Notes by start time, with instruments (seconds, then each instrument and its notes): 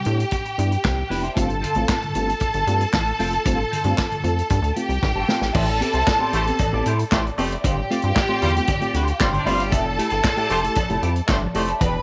Already playing: string section G4 G5
0.05 analog synth bass A2, reed electric piano B3 D4 E4, closed hi-hat
0.18 muted clean electric guitar stroke, closed hi-hat
0.31 muted clean electric guitar stroke, kick, closed hi-hat
0.45 muted clean electric guitar stroke, closed hi-hat
0.58 analog synth bass G2, reed electric piano B3 D4 E4, closed hi-hat
0.71 muted clean electric guitar stroke, closed hi-hat
0.84 analog synth bass C2, muted clean electric guitar stroke, kick, snare, clap
0.97 muted clean electric guitar stroke
1.09 analog synth bass F1, reed electric piano B3 D4 E4, clean electric guitar D4 E4 B4, snare, open hi-hat
1.23 clean electric guitar D4 E4 C5, closed hi-hat
1.35 analog synth bass G1, reed electric piano A3 C4 F4, clean electric guitar C4 F4 A4, string section A4 A5, kick, closed hi-hat
1.50 closed hi-hat
1.62 reed electric piano G2 D3, clean electric guitar C4 F4 A4, closed hi-hat
1.74 analog synth bass A1, reed electric piano A3 C4 F4, clean electric guitar C4 F4 A4, closed hi-hat
1.88 reed electric piano C4 F4, muted clean electric guitar stroke, kick, snare, clap
2.01 reed electric piano G2 D3, muted clean electric guitar stroke, closed hi-hat
2.15 analog synth bass G1, reed electric piano A3 C4 F4, closed hi-hat
2.26 muted clean electric guitar stroke, closed hi-hat
2.40 muted clean electric guitar stroke, kick, closed hi-hat
2.53 analog synth bass G1, muted clean electric guitar stroke, closed hi-hat
2.67 analog synth bass G2, reed electric piano A3 C4 F4, closed hi-hat
2.80 muted clean electric guitar stroke, closed hi-hat
2.93 analog synth bass A1, kick, snare, clap
3.07 muted clean electric guitar stroke, closed hi-hat
3.19 analog synth bass F1, reed electric piano A3 C4 F4, clean electric guitar C4 F4 A4, snare, open hi-hat
3.32 muted clean electric guitar stroke, closed hi-hat
3.46 analog synth bass G1, reed electric piano A3 C4 F4, clean electric guitar C4 F4 A4, kick, closed hi-hat
3.71 reed electric piano G2 D3, clean electric guitar C4 F4 A4, closed hi-hat
3.84 analog synth bass G2, reed electric piano A3 C4 F4, clean electric guitar C4 F4 A4, closed hi-hat
3.97 reed electric piano C4 F4, muted clean electric guitar stroke, kick, snare, clap
4.11 reed electric piano G2 D3, muted clean electric guitar stroke, closed hi-hat
4.24 analog synth bass F2, reed electric piano A3 C4 F4, closed hi-hat
4.37 muted clean electric guitar stroke, closed hi-hat
4.50 analog synth bass G2, muted clean electric guitar stroke, kick, closed hi-hat
4.62 analog synth bass D2, muted clean electric guitar stroke, closed hi-hat
4.76 reed electric piano A3 C4 F4, string section G4 G5, closed hi-hat
4.89 analog synth bass C2, muted clean electric guitar stroke, closed hi-hat
5.02 analog synth bass A1, muted clean electric guitar stroke, kick, snare
5.15 analog synth bass G1, clean electric guitar C4 F4 A4
5.28 reed electric piano A3 C4 F4, clean electric guitar C4 F4 A4, snare
5.41 analog synth bass A1, muted clean electric guitar stroke, snare
5.53 analog synth bass A1, reed electric piano A2 E3, clean electric guitar E4 G4 C5, string section A4 A5, kick, crash, cowbell
5.67 muted clean electric guitar stroke
5.80 reed electric piano B3 C4 G4, clean electric guitar E4 G4 D5, closed hi-hat
5.93 analog synth bass C2, reed electric piano C4 G4, clean electric guitar E4 G4 C5, closed hi-hat
6.07 kick, snare, clap, cowbell
6.19 reed electric piano B3 C4 G4, clean electric guitar E4 G4 C5
6.33 analog synth bass A1, reed electric piano A2 E3, horn section A3 G4 C5, clean electric guitar E4 G4 C5, closed hi-hat
6.46 reed electric piano B3 C4 G4, muted clean electric guitar stroke, closed hi-hat
6.59 reed electric piano A2 E3, muted clean electric guitar stroke, kick, closed hi-hat, cowbell
6.73 analog synth bass A1, reed electric piano B3 C4 G4, clean electric guitar E4 G4 D5
6.86 analog synth bass A2, reed electric piano C4 G4, clean electric guitar E4 G4 C5, closed hi-hat
6.99 muted clean electric guitar stroke, closed hi-hat
7.12 analog synth bass A1, horn section A3 G4 C5, clean electric guitar E4 G4 C5, kick, snare, clap, cowbell
7.26 muted clean electric guitar stroke, closed hi-hat
7.38 analog synth bass F1, horn section A3 G4 C5, reed electric piano B3 C4 G4, muted clean electric guitar stroke, open hi-hat, cowbell
7.51 clean electric guitar E4 G4 D5, closed hi-hat
7.62 analog synth bass G1, reed electric piano G2 D3, clean electric guitar F4 G4 C5, string section G4 G5, kick, closed hi-hat, cowbell
7.77 muted clean electric guitar stroke
7.91 reed electric piano A3 C4 F4, clean electric guitar F4 G4 D5, closed hi-hat
8.02 analog synth bass G2, reed electric piano C4 F4, clean electric guitar F4 G4 C5, closed hi-hat
8.15 muted clean electric guitar stroke, kick, snare, clap, cowbell
8.29 reed electric piano A3 C4 F4, clean electric guitar F4 G4 C5
8.42 analog synth bass E2, reed electric piano G2 D3, horn section G3 F4 C5, clean electric guitar F4 G4 C5, closed hi-hat
8.55 reed electric piano A3 C4 F4, muted clean electric guitar stroke, closed hi-hat
8.67 reed electric piano G2 D3, muted clean electric guitar stroke, kick, closed hi-hat, cowbell
8.81 reed electric piano A3 C4 F4, clean electric guitar F4 G4 D5, closed hi-hat
8.94 analog synth bass D2, reed electric piano C4 F4, clean electric guitar F4 G4 C5, closed hi-hat
9.07 muted clean electric guitar stroke, closed hi-hat
9.20 analog synth bass G1, horn section G3 F4 C5, reed electric piano C4 F4, muted clean electric guitar stroke, kick, snare, clap, cowbell
9.33 reed electric piano G2 D3, clean electric guitar F4 G4 C5, closed hi-hat
9.39 string section D4 D5
9.46 analog synth bass G1, horn section G3 F4 C5, reed electric piano A3 C4 F4, string section E4 E5, muted clean electric guitar stroke, open hi-hat, cowbell
9.55 string section F4 F5
9.60 string section G4 G5, muted clean electric guitar stroke, closed hi-hat
9.71 analog synth bass F1, reed electric piano F3, clean electric guitar A3 E4 G4, string section A4 A5, kick, closed hi-hat, cowbell
9.86 muted clean electric guitar stroke
9.98 reed electric piano A3 E4 G4, clean electric guitar A3 E4 A4, closed hi-hat
10.10 analog synth bass G1, clean electric guitar A3 E4 G4, reed electric piano E4 G4, closed hi-hat
10.24 muted clean electric guitar stroke, kick, snare, clap, cowbell
10.37 reed electric piano A3 E4 G4, clean electric guitar A3 E4 G4, closed hi-hat
10.50 analog synth bass F1, reed electric piano F3, clean electric guitar A3 E4 G4, horn section A3 G4 C5, closed hi-hat
10.63 reed electric piano A3 E4 G4, muted clean electric guitar stroke, closed hi-hat
10.75 reed electric piano F3, muted clean electric guitar stroke, kick, closed hi-hat, cowbell
10.88 analog synth bass F1, clean electric guitar A3 E4 A4, reed electric piano A3 E4 G4, closed hi-hat
11.01 analog synth bass F2, clean electric guitar A3 E4 G4, reed electric piano E4 G4, closed hi-hat
11.14 muted clean electric guitar stroke, closed hi-hat
11.26 analog synth bass G1, clean electric guitar A3 E4 G4, horn section A3 G4 C5, reed electric piano E4 G4, kick, snare, clap, cowbell
11.40 reed electric piano F3, muted clean electric guitar stroke
11.54 analog synth bass F1, reed electric piano A3 E4 G4, horn section A3 G4 C5, muted clean electric guitar stroke, open hi-hat, cowbell
11.67 clean electric guitar A3 E4 A4, closed hi-hat
11.80 analog synth bass E1, reed electric piano E3, clean electric guitar D4 G4 B4, string section B4 B5, kick, closed hi-hat, cowbell
11.94 muted clean electric guitar stroke